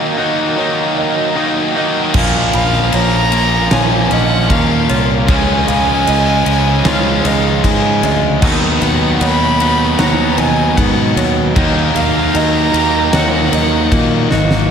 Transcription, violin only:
2.55 2.91 F5 medium
2.95 3.74 A#5 loud
3.73 4.13 G#5 loud
4.12 4.53 F#5 loud
4.51 5.09 F5 loud
5.30 6.90 G#5 loud
6.88 7.65 F5 loud
7.67 8.20 G#5 medium
8.82 9.18 F#5 medium
9.22 10.01 B5 loud
9.99 10.39 A#5 loud
10.38 10.79 G#5 loud
10.77 11.36 F#5 medium
11.97 12.37 F5 medium
12.36 13.14 A#5 loud
13.14 14.27 F#5 medium

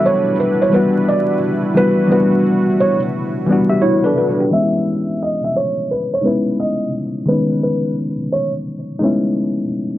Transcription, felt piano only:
0.06 0.35 C#5 medium
0.40 0.60 B4 medium
0.62 0.72 C#5 medium
0.74 1.04 B4 medium
1.08 1.38 D5 medium
1.77 2.07 B4 loud
2.12 2.42 B4 medium
2.80 2.99 C#5 medium
4.53 5.21 E5 medium
5.22 5.41 D#5 medium
5.44 5.54 E5 medium
5.56 5.90 C#5 medium
5.91 6.10 B4 medium
6.13 6.23 C#5 medium
6.25 6.55 B4 medium
6.59 6.90 D#5 medium
7.29 7.59 B4 medium
7.63 7.93 B4 medium
8.32 8.51 C#5 medium

